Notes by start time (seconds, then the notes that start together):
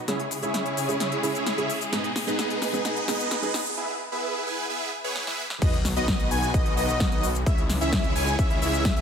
Already playing: riser
0.07 C#3 G#3 C#4 E4 G#4 C#5 E5, snare, closed hi-hat, shaker
0.20 closed hi-hat
0.31 open hi-hat, shaker
0.42 C#3 G#3 C#4 E4 G#4 C#5 E5, closed hi-hat, shaker
0.54 snare, closed hi-hat, shaker
0.66 closed hi-hat
0.77 C#4 E4 G#4 C#5 G#5, open hi-hat, shaker
0.88 C#3 G#3 C#4 E4 G#4, closed hi-hat, shaker
1.00 C#4 E4 G#4 C#5 E5, snare, closed hi-hat, shaker
1.12 closed hi-hat
1.23 C#3 G#3 C#4 E4 G#4 C#5 E5, open hi-hat, shaker
1.35 closed hi-hat, shaker
1.46 snare, closed hi-hat, shaker
1.57 C#3 G#3 C#4 E4 G#4 C#5 E5, closed hi-hat
1.70 open hi-hat, shaker
1.81 closed hi-hat, shaker
1.92 G#2 B2 G#3 B3 D#4 G#4 B4 D#5, snare, closed hi-hat, shaker
2.04 closed hi-hat
2.16 snare, open hi-hat, shaker
2.27 G#2 G#3 B3 D#4 G#4 B4 D#5, closed hi-hat, shaker
2.39 snare, closed hi-hat, shaker
2.50 closed hi-hat
2.62 B3 D#4 G#4 B4 G#5, snare, open hi-hat, shaker
2.73 G#2 G#3 B3 D#4 G#4, closed hi-hat, shaker
2.85 B3 D#4 G#4 B4 D#5, snare, closed hi-hat, shaker
2.96 closed hi-hat
3.07 G#2 G#3 B3 D#4 G#4 B4 D#5, snare, open hi-hat, shaker
3.20 closed hi-hat, shaker
3.31 snare, closed hi-hat, shaker
3.42 G#2 G#3 B3 D#4 G#4 B4 D#5, closed hi-hat
3.54 snare, open hi-hat, shaker
3.66 closed hi-hat, shaker
3.77 B3 E4 G#4 B4 E5
4.12 B3 E4 G#4 B4 E5
4.46 B3 E4 G#4 B4 G#5
4.70 B3 E4 G#4 B4 E5
5.04 B3 E4 G#4 B4 C#5
5.16 snare
5.27 B3 E4 G#4 B4 E5, snare
5.50 snare
5.62 B1 D#3 F#3 B3 D#4 F#4 B4 D#5, kick, closed hi-hat, crash, sub drop, shaker
5.73 closed hi-hat
5.85 snare, open hi-hat, shaker
5.96 B1 B3 D#4 F#4 B4 D#5, closed hi-hat, shaker
6.08 kick, snare, closed hi-hat, shaker
6.20 closed hi-hat
6.31 B1 B3 D#4 F#4 B4 G#5, open hi-hat, shaker
6.43 closed hi-hat, shaker
6.54 B1 B3 F#4 B4 D#5, kick, closed hi-hat, shaker
6.66 closed hi-hat
6.77 B1 B3 D#4 F#4 B4 D#5, open hi-hat, shaker
6.89 closed hi-hat, shaker
7.00 kick, snare, closed hi-hat, shaker
7.12 B1 B3 D#4 F#4 B4 D#5, closed hi-hat
7.23 open hi-hat, shaker
7.35 closed hi-hat, shaker
7.46 C#2 C#3 E3 G#3 C#4 E4 G#4 C#5 E5, kick, closed hi-hat, shaker
7.58 closed hi-hat
7.70 snare, open hi-hat, shaker
7.81 C#2 C#4 E4 G#4 C#5 E5, closed hi-hat, shaker
7.93 kick, snare, closed hi-hat, shaker
8.04 closed hi-hat
8.16 C#2 C#4 E4 G#4 C#5 G#5, open hi-hat, shaker
8.27 closed hi-hat, shaker
8.39 C#2 C#4 E4 C#5 E5, kick, closed hi-hat, shaker
8.50 closed hi-hat
8.62 C#2 C#4 E4 G#4 C#5 E5, open hi-hat, shaker
8.73 closed hi-hat, shaker
8.85 kick, snare, closed hi-hat, shaker
8.96 C#2 C#4 E4 G#4 C#5 E5, closed hi-hat